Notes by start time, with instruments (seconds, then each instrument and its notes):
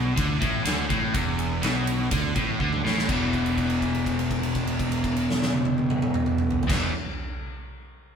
Already playing: fingered electric bass B1, overdriven electric guitar B2
0.16 fingered electric bass D2, overdriven electric guitar D3, kick, ride
0.40 fingered electric bass A1, overdriven electric guitar A2, kick, ride
0.65 fingered electric bass D2, overdriven electric guitar D3, snare, ride
0.89 fingered electric bass A1, overdriven electric guitar A2, kick, ride
1.14 fingered electric bass E1, overdriven electric guitar E2, kick, ride
1.39 ride
1.62 fingered electric bass B1, overdriven electric guitar B2, snare, ride
1.87 ride
2.11 fingered electric bass D2, overdriven electric guitar D3, kick, ride
2.36 fingered electric bass A1, overdriven electric guitar A2, kick, ride
2.60 fingered electric bass D2, overdriven electric guitar D3, kick
2.73 mid tom
2.84 fingered electric bass A1, overdriven electric guitar A2, snare
2.98 snare
3.07 fingered electric bass E1, overdriven electric guitar E2 B2 E3, kick, crash
3.33 kick, crash
3.46 crash
3.58 kick, crash
3.70 crash
3.82 kick, crash
3.95 crash
4.06 kick, crash
4.19 crash
4.31 kick, crash
4.43 crash
4.55 kick, crash
4.67 crash
4.79 kick, crash
4.92 crash
5.04 kick, crash
5.17 crash
5.30 snare
5.42 snare
5.53 high tom
5.65 high tom
5.78 high tom
5.90 mid tom
6.02 mid tom
6.14 mid tom
6.26 mid tom
6.38 mid tom
6.50 floor tom
6.63 floor tom
6.67 fingered electric bass E1, overdriven electric guitar E2 B2, kick, crash
6.72 overdriven electric guitar E3, snare